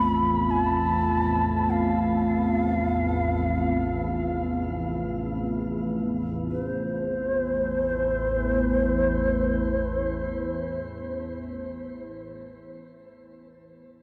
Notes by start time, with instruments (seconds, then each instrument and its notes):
Already playing: synth drone A1 E2, ambient pad A3 C4 F4 F5, shakuhachi B5
0.50 shakuhachi G#5
0.61 shakuhachi A5
1.69 shakuhachi F5
6.51 synth drone A1 E2, ambient pad A3, shakuhachi B4
6.62 shakuhachi C5
6.71 ambient pad E4
6.89 ambient pad B4